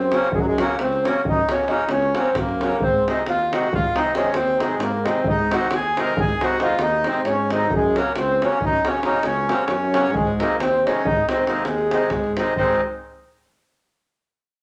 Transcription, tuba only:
0.00 0.15 F#2 loud
0.34 0.61 F#2 loud
0.80 1.08 C#2 loud
1.27 1.40 F#2 loud
1.88 2.15 C#2 loud
2.33 2.81 F#2 loud
2.79 3.07 G#2 loud
3.25 3.53 D#2 medium
3.72 3.86 G#2 medium
4.32 4.60 D#2 loud
4.78 5.06 G#2 loud
5.25 5.52 G#2 loud
5.70 5.98 D#2 loud
6.17 6.31 G#2 loud
6.78 7.06 D#2 loud
7.23 7.71 G#2 loud
7.70 7.97 F#2 loud
8.16 8.44 C#2 loud
8.62 8.76 F#2 loud
9.23 9.50 C#2 loud
9.68 10.14 F#2 loud
10.13 10.41 G#2 loud
10.58 10.86 D#2 loud
11.05 11.19 G#2 loud
11.66 11.93 D#2 loud
12.12 12.40 G#2 medium
12.58 12.82 G#1 loud

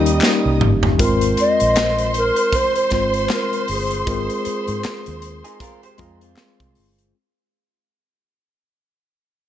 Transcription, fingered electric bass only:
0.00 0.19 D#2 loud
0.46 0.60 C2 medium
0.62 0.96 G1 medium
1.00 1.34 G#1 loud
1.62 2.30 A#1 medium
2.92 3.26 G#1 loud
3.69 4.03 G1 medium
4.07 4.27 G#1 loud
4.47 muted fingered electric bass stroke soft
4.68 4.83 G#2 loud
4.85 muted fingered electric bass stroke soft
5.08 5.42 D#2 loud
5.99 6.34 F2 medium
6.61 6.75 C2 medium
6.78 7.12 G1 medium

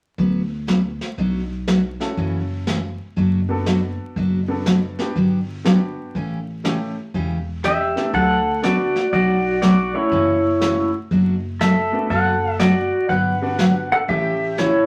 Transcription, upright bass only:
0.18 0.98 D2 medium
1.18 1.98 B1 medium
2.17 2.97 F#1 medium
3.17 3.96 F#1 medium
4.16 4.96 F#1 medium
5.16 5.95 G1 medium
6.15 6.94 A1 medium
7.14 7.94 E1 medium
8.13 8.93 D2 medium
9.13 9.92 B1 loud
10.12 10.91 F#1 medium
11.11 11.90 F#1 medium
12.10 12.90 F#1 medium
13.09 13.89 G1 medium
14.08 14.86 A1 loud

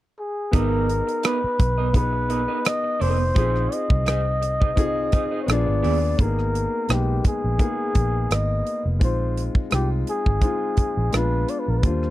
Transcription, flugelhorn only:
0.19 0.56 G#4 medium
0.55 1.26 A#4 medium
1.24 1.95 B4 medium
1.96 2.68 B4 loud
2.67 3.03 D#5 medium
3.01 3.75 C5 loud
3.73 5.41 D#5 medium
5.42 5.51 C#5 medium
5.50 6.22 D5 medium
6.20 6.93 A#4 medium
6.92 7.26 G4 medium
7.28 8.34 G#4 medium
8.32 8.87 D#5 medium
9.04 9.44 C5 medium
9.74 9.89 G4 medium
10.09 11.17 G#4 medium
11.15 11.51 B4 medium
11.50 11.61 D5 medium
11.59 11.71 B4 medium
11.70 11.79 A#4 medium
11.78 11.87 B4 medium
11.86 12.10 C5 medium

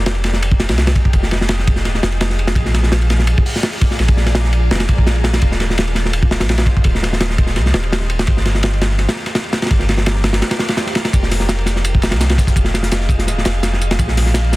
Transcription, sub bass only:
0.00 0.71 F1 loud
0.69 0.94 C2 loud
1.13 1.86 F1 loud
1.85 2.01 D#1 medium
2.03 2.55 F1 loud
2.56 3.35 A#1 loud
3.99 4.70 A#1 loud
4.71 4.87 F1 medium
4.89 5.41 A#1 medium
5.42 6.42 D#1 loud
6.41 6.66 A#1 loud
6.85 7.58 D#1 loud
7.57 7.73 C2 medium
7.74 8.27 D#1 medium
8.28 9.07 G1 loud
9.71 10.42 G1 loud
11.13 12.14 F1 loud
12.12 12.37 C2 loud
12.56 13.29 F1 loud
13.28 13.44 D#1 medium
13.46 13.98 F1 loud
13.99 14.56 A#1 loud

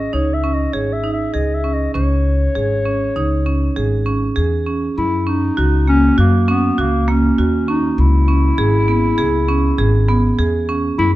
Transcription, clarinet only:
0.00 0.15 D#5 medium
0.13 0.35 C#5 medium
0.34 0.55 E5 medium
0.54 0.75 D#5 medium
0.73 0.94 C#5 medium
0.93 1.13 E5 medium
1.13 1.35 E5 medium
1.33 1.56 D#5 medium
1.54 1.75 E5 medium
1.73 1.94 D#5 medium
1.94 4.32 C#5 medium
4.98 5.30 E4 loud
5.29 5.88 D#4 loud
5.88 6.16 C#4 loud
6.20 6.47 A#3 medium
6.50 6.82 B3 medium
6.80 7.11 A#3 loud
7.10 7.69 C#4 medium
7.70 8.01 D#4 loud
8.00 10.40 E4 loud
10.98 11.12 E4 loud

